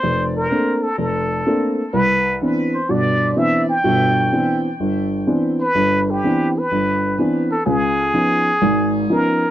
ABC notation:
X:1
M:4/4
L:1/8
Q:"Swing" 1/4=126
K:Cmix
V:1 name="Muted trumpet"
c B2 A A3 z | =B2 z c d2 e g- | g3 z4 =B- | =B G2 B3 z A |
_A6 B2 |]
V:2 name="Upright piano"
F,,,2 [A,B,CD] z F,,,2 [A,B,CD] z | C,,2 [E,=B,CD] z [G,,,=B,,]2 [E,B,CD] z | [G,,,=B,,]2 [E,=B,CD] z G,,,2 [E,B,CD] z | G,,,2 [E,=B,CD] z G,,,2 [E,B,CD] z |
_D,,2 [F,_C_D_E] z [_A,,,_A,,]2 [F,CDE] z |]